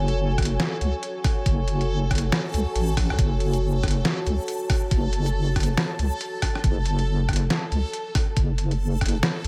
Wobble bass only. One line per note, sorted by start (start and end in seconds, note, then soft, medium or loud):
0.00 0.59 F#1 loud
0.81 0.93 C#2 medium
1.46 2.31 F#1 loud
2.54 2.66 C#2 loud
2.76 3.09 A1 loud
3.10 3.18 C#2 loud
3.19 4.04 F#1 loud
4.27 4.39 C#2 medium
4.91 5.77 F#1 loud
5.99 6.11 C#2 loud
6.64 7.49 F#1 loud
7.72 7.84 C#2 medium
8.37 9.22 F#1 loud
9.45 9.48 C#2 loud